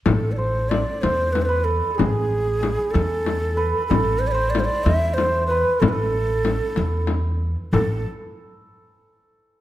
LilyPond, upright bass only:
\new Staff \with { instrumentName = "Upright bass" } { \clef bass \time 6/8 \tempo 4. = 63 a,,4. e,4. | a,,4. e,4. | a,,4. e,4. | a,,4. e,4. |
a,,8 r2 r8 | }